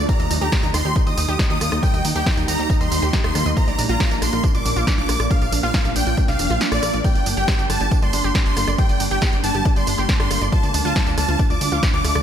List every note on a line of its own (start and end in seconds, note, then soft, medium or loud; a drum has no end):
0.09 0.11 G3 medium
0.09 3.53 G3 medium
0.09 10.48 A#3 medium
0.09 3.53 D#4 medium
0.09 0.32 A#5 loud
0.09 kick loud
0.09 closed hi-hat medium
0.09 tambourine soft
0.20 0.28 D#2 medium
0.20 0.26 D#5 medium
0.20 closed hi-hat soft
0.20 tambourine soft
0.31 0.39 D#2 loud
0.31 0.33 D#4 medium
0.31 open hi-hat loud
0.31 tambourine medium
0.41 0.50 D#2 medium
0.41 0.44 G4 loud
0.41 0.65 A#5 loud
0.41 tambourine soft
0.52 kick loud
0.52 snare loud
0.52 closed hi-hat medium
0.52 tambourine soft
0.63 0.72 D#2 medium
0.63 0.67 D#4 medium
0.63 closed hi-hat soft
0.63 tambourine soft
0.74 0.82 D#2 loud
0.74 0.78 D#4 medium
0.74 0.97 C6 medium
0.74 cross-stick medium
0.74 open hi-hat loud
0.74 tambourine medium
0.85 0.93 D#2 medium
0.85 0.89 G4 medium
0.85 closed hi-hat soft
0.85 tambourine soft
0.96 1.00 D#4 medium
0.96 kick loud
0.96 closed hi-hat medium
0.96 tambourine soft
1.07 1.15 D#2 medium
1.07 1.13 D#5 medium
1.07 1.38 D#6 loud
1.07 closed hi-hat soft
1.07 tambourine soft
1.17 1.26 D#2 loud
1.17 1.20 D#4 medium
1.17 open hi-hat loud
1.17 tambourine medium
1.28 1.37 D#2 medium
1.28 1.31 G4 loud
1.28 closed hi-hat soft
1.28 tambourine soft
1.39 1.44 D#4 medium
1.39 kick loud
1.39 snare loud
1.39 closed hi-hat medium
1.39 tambourine soft
1.50 1.59 D#2 medium
1.50 1.55 D#4 medium
1.50 1.73 D#6 loud
1.50 closed hi-hat soft
1.61 1.69 D#2 loud
1.61 1.65 A#3 medium
1.61 cross-stick medium
1.61 open hi-hat loud
1.61 tambourine medium
1.72 1.80 D#2 medium
1.72 1.78 D#5 medium
1.72 cross-stick medium
1.72 closed hi-hat soft
1.72 tambourine soft
1.83 1.85 G3 medium
1.83 2.06 G5 loud
1.83 kick loud
1.83 closed hi-hat medium
1.83 tambourine soft
1.94 2.02 D#2 medium
1.94 2.00 D#5 medium
1.94 closed hi-hat soft
1.94 tambourine soft
2.05 2.13 D#2 loud
2.05 2.07 D#4 medium
2.05 open hi-hat loud
2.05 tambourine medium
2.15 2.24 D#2 medium
2.15 2.18 G4 loud
2.15 2.39 G5 loud
2.15 tambourine soft
2.26 2.29 G4 medium
2.26 kick loud
2.26 snare loud
2.26 closed hi-hat medium
2.26 tambourine soft
2.37 2.46 D#2 medium
2.37 2.42 D#4 medium
2.37 closed hi-hat soft
2.37 tambourine soft
2.48 2.56 D#2 loud
2.48 2.52 D#4 medium
2.48 2.71 A#5 loud
2.48 open hi-hat loud
2.48 tambourine medium
2.59 2.67 D#2 medium
2.59 2.63 G4 medium
2.59 closed hi-hat soft
2.59 tambourine soft
2.70 2.74 D#4 medium
2.70 kick loud
2.70 closed hi-hat medium
2.70 tambourine soft
2.81 2.89 D#2 medium
2.81 2.87 D#5 medium
2.81 3.11 C6 loud
2.81 closed hi-hat soft
2.81 tambourine soft
2.91 3.00 D#2 loud
2.91 2.94 D#4 medium
2.91 open hi-hat loud
2.91 tambourine medium
3.02 3.11 D#2 medium
3.02 3.05 G4 loud
3.02 closed hi-hat soft
3.02 tambourine soft
3.13 3.18 D#4 medium
3.13 kick loud
3.13 snare loud
3.13 closed hi-hat medium
3.13 tambourine soft
3.24 3.33 D#2 medium
3.24 3.28 D#4 medium
3.24 3.47 C6 loud
3.24 cross-stick medium
3.24 closed hi-hat soft
3.35 3.43 D#2 loud
3.35 3.39 A#3 medium
3.35 cross-stick medium
3.35 open hi-hat loud
3.35 tambourine medium
3.46 3.54 D#2 medium
3.46 3.52 D#5 medium
3.46 closed hi-hat soft
3.46 tambourine soft
3.57 3.59 F3 medium
3.57 7.01 F3 medium
3.57 12.23 D4 medium
3.57 3.80 A#5 loud
3.57 kick loud
3.57 closed hi-hat medium
3.57 tambourine soft
3.68 3.76 A#1 medium
3.68 3.74 D5 medium
3.68 closed hi-hat soft
3.68 tambourine soft
3.78 3.87 A#1 loud
3.78 3.81 D4 medium
3.78 open hi-hat loud
3.78 tambourine medium
3.89 3.98 A#1 medium
3.89 3.92 F4 loud
3.89 4.12 A#5 loud
3.89 tambourine soft
4.00 4.03 F4 medium
4.00 kick loud
4.00 snare loud
4.00 closed hi-hat medium
4.00 tambourine soft
4.11 4.19 A#1 medium
4.11 4.15 D4 medium
4.11 closed hi-hat soft
4.11 tambourine soft
4.22 4.30 A#1 loud
4.22 4.26 D4 medium
4.22 4.45 C6 medium
4.22 cross-stick medium
4.22 open hi-hat loud
4.22 tambourine medium
4.33 4.41 A#1 medium
4.33 4.37 F4 medium
4.33 closed hi-hat soft
4.33 tambourine soft
4.44 4.48 D4 medium
4.44 kick loud
4.44 closed hi-hat medium
4.44 tambourine soft
4.54 4.63 A#1 medium
4.54 4.61 D5 medium
4.54 4.85 D6 loud
4.54 closed hi-hat soft
4.54 tambourine soft
4.65 4.74 A#1 loud
4.65 4.68 D4 medium
4.65 open hi-hat loud
4.65 tambourine medium
4.76 4.85 A#1 medium
4.76 4.79 F4 loud
4.76 closed hi-hat soft
4.76 tambourine soft
4.87 4.92 D4 medium
4.87 kick loud
4.87 snare loud
4.87 closed hi-hat medium
4.87 tambourine soft
4.98 5.06 A#1 medium
4.98 5.02 D4 medium
4.98 5.21 D6 medium
4.98 closed hi-hat soft
5.09 5.17 A#1 loud
5.09 5.13 A#3 medium
5.09 cross-stick medium
5.09 open hi-hat loud
5.09 tambourine medium
5.20 5.28 A#1 medium
5.20 5.26 D5 medium
5.20 cross-stick medium
5.20 tambourine soft
5.31 5.33 F3 medium
5.31 5.54 F5 loud
5.31 kick loud
5.31 closed hi-hat medium
5.31 tambourine soft
5.41 5.50 A#1 medium
5.41 5.48 D5 medium
5.41 closed hi-hat soft
5.41 tambourine soft
5.52 5.61 A#1 loud
5.52 5.55 D4 medium
5.52 open hi-hat loud
5.52 tambourine medium
5.63 5.72 A#1 medium
5.63 5.66 F4 loud
5.63 5.86 F5 loud
5.63 closed hi-hat soft
5.74 5.77 F4 medium
5.74 kick loud
5.74 snare loud
5.74 closed hi-hat medium
5.74 tambourine soft
5.85 5.93 A#1 medium
5.85 5.89 D4 medium
5.85 closed hi-hat soft
5.85 tambourine soft
5.96 6.04 A#1 loud
5.96 6.00 D4 medium
5.96 6.19 G5 loud
5.96 open hi-hat loud
5.96 tambourine medium
6.07 6.15 A#1 medium
6.07 6.11 F4 medium
6.07 closed hi-hat soft
6.07 tambourine soft
6.17 6.22 D4 medium
6.17 kick loud
6.17 closed hi-hat medium
6.17 tambourine soft
6.28 6.37 C2 medium
6.28 6.35 D5 medium
6.28 6.59 F5 loud
6.28 snare soft
6.28 closed hi-hat soft
6.28 tambourine soft
6.39 6.48 F1 loud
6.39 6.42 D4 medium
6.39 open hi-hat loud
6.39 tambourine medium
6.50 6.59 A#1 medium
6.50 6.53 F4 loud
6.50 closed hi-hat soft
6.50 tambourine soft
6.61 6.65 D4 medium
6.61 snare loud
6.61 closed hi-hat medium
6.61 tambourine soft
6.72 6.80 A#1 medium
6.72 6.76 D4 medium
6.72 6.95 D5 loud
6.72 cross-stick medium
6.72 closed hi-hat soft
6.72 tambourine soft
6.83 6.91 A#1 loud
6.83 6.87 A#3 medium
6.83 cross-stick medium
6.83 open hi-hat loud
6.83 tambourine medium
6.94 7.02 A#1 medium
6.94 7.00 D5 medium
6.94 tambourine soft
7.04 7.07 G3 medium
7.04 10.49 G3 medium
7.04 7.28 G5 loud
7.04 kick loud
7.04 closed hi-hat medium
7.04 tambourine soft
7.15 7.24 G1 medium
7.15 7.22 D5 medium
7.15 closed hi-hat soft
7.15 tambourine soft
7.26 7.35 G1 loud
7.26 7.29 D4 medium
7.26 open hi-hat loud
7.26 tambourine medium
7.37 7.46 G1 medium
7.37 7.40 G4 loud
7.37 7.60 G5 loud
7.37 closed hi-hat soft
7.48 7.51 G4 medium
7.48 kick loud
7.48 snare loud
7.48 closed hi-hat medium
7.48 tambourine soft
7.59 7.67 G1 medium
7.59 7.63 D4 medium
7.59 closed hi-hat soft
7.59 tambourine soft
7.70 7.78 G1 loud
7.70 7.74 D4 medium
7.70 7.93 A5 medium
7.70 cross-stick medium
7.70 open hi-hat loud
7.70 tambourine medium
7.81 7.89 G1 medium
7.81 7.85 G4 medium
7.81 closed hi-hat soft
7.81 tambourine soft
7.91 7.96 D4 medium
7.91 kick loud
7.91 closed hi-hat medium
7.91 tambourine soft
8.02 8.11 G1 medium
8.02 8.09 D5 medium
8.02 8.33 C6 loud
8.02 closed hi-hat soft
8.02 tambourine soft
8.13 8.22 G1 loud
8.13 8.16 D4 medium
8.13 open hi-hat loud
8.13 tambourine medium
8.24 8.32 G1 medium
8.24 8.27 G4 loud
8.24 closed hi-hat soft
8.24 tambourine soft
8.35 8.39 D4 medium
8.35 kick loud
8.35 snare loud
8.35 closed hi-hat medium
8.35 tambourine soft
8.46 8.54 G1 medium
8.46 8.50 D4 medium
8.46 8.69 C6 loud
8.46 closed hi-hat soft
8.57 8.65 G1 loud
8.57 8.61 A#3 medium
8.57 cross-stick medium
8.57 open hi-hat loud
8.57 tambourine medium
8.68 8.76 G1 medium
8.68 8.74 D5 medium
8.68 cross-stick medium
8.68 closed hi-hat soft
8.68 tambourine soft
8.78 8.81 G3 medium
8.78 9.02 G5 loud
8.78 kick loud
8.78 closed hi-hat medium
8.78 tambourine soft
8.89 8.98 G1 medium
8.89 8.96 D5 medium
8.89 closed hi-hat soft
8.89 tambourine soft
9.00 9.09 G1 loud
9.00 9.03 D4 medium
9.00 open hi-hat loud
9.00 tambourine medium
9.11 9.19 G1 medium
9.11 9.14 G4 loud
9.11 9.34 G5 loud
9.11 closed hi-hat soft
9.11 tambourine soft
9.22 9.25 G4 medium
9.22 kick loud
9.22 snare loud
9.22 closed hi-hat medium
9.22 tambourine soft
9.33 9.41 G1 medium
9.33 9.37 D4 medium
9.33 closed hi-hat soft
9.33 tambourine soft
9.44 9.52 G1 loud
9.44 9.48 D4 medium
9.44 9.67 A5 loud
9.44 open hi-hat loud
9.44 tambourine medium
9.55 9.63 G1 loud
9.55 9.59 G4 medium
9.55 closed hi-hat soft
9.55 tambourine soft
9.65 9.70 D4 medium
9.65 kick loud
9.65 closed hi-hat medium
9.65 tambourine soft
9.76 9.85 G1 medium
9.76 9.83 D5 medium
9.76 10.07 C6 loud
9.76 closed hi-hat soft
9.76 tambourine soft
9.87 9.96 G1 loud
9.87 9.90 D4 medium
9.87 open hi-hat loud
9.87 tambourine medium
9.98 10.06 G1 medium
9.98 10.01 G4 loud
9.98 tambourine soft
10.09 10.13 D4 medium
10.09 kick loud
10.09 snare loud
10.09 closed hi-hat medium
10.09 tambourine soft
10.20 10.28 G1 medium
10.20 10.24 D4 medium
10.20 10.43 C6 loud
10.20 cross-stick medium
10.20 closed hi-hat soft
10.31 10.39 G1 loud
10.31 10.35 A#3 medium
10.31 cross-stick medium
10.31 open hi-hat loud
10.31 tambourine medium
10.41 10.50 G1 medium
10.41 10.48 D5 medium
10.41 closed hi-hat soft
10.41 tambourine soft
10.52 10.55 F3 medium
10.52 12.23 F3 medium
10.52 12.23 A3 medium
10.52 10.76 A5 loud
10.52 kick loud
10.52 closed hi-hat medium
10.52 tambourine soft
10.63 10.72 D2 medium
10.63 10.70 D5 medium
10.63 closed hi-hat soft
10.63 tambourine soft
10.74 10.83 D2 loud
10.74 10.77 D4 medium
10.74 open hi-hat loud
10.74 tambourine medium
10.85 10.93 D2 medium
10.85 10.88 F4 loud
10.85 11.08 A5 loud
10.85 closed hi-hat soft
10.85 tambourine soft
10.96 10.99 F4 medium
10.96 kick loud
10.96 snare loud
10.96 closed hi-hat medium
10.96 tambourine soft
11.07 11.15 D2 medium
11.07 11.11 D4 medium
11.07 closed hi-hat soft
11.07 tambourine soft
11.18 11.26 D2 loud
11.18 11.22 D4 medium
11.18 11.41 A5 loud
11.18 cross-stick medium
11.18 open hi-hat loud
11.18 tambourine medium
11.28 11.37 D2 medium
11.28 11.33 F4 medium
11.28 closed hi-hat soft
11.28 tambourine soft
11.39 11.44 D4 medium
11.39 kick loud
11.39 closed hi-hat medium
11.39 tambourine soft
11.50 11.59 D2 medium
11.50 11.57 D5 medium
11.50 11.81 D6 loud
11.50 closed hi-hat soft
11.50 tambourine soft
11.61 11.69 D2 loud
11.61 11.64 D4 medium
11.61 open hi-hat loud
11.61 tambourine medium
11.72 11.80 D2 medium
11.72 11.75 F4 loud
11.72 tambourine soft
11.83 11.87 D4 medium
11.83 kick loud
11.83 snare loud
11.83 closed hi-hat medium
11.83 tambourine soft
11.94 12.02 D2 medium
11.94 11.98 D4 medium
11.94 12.17 D6 loud
11.94 closed hi-hat soft
12.05 12.13 D2 loud
12.05 12.09 A3 medium
12.05 cross-stick medium
12.05 open hi-hat loud
12.05 tambourine medium
12.15 12.23 D2 medium
12.15 12.22 D5 medium
12.15 cross-stick medium
12.15 closed hi-hat soft
12.15 tambourine soft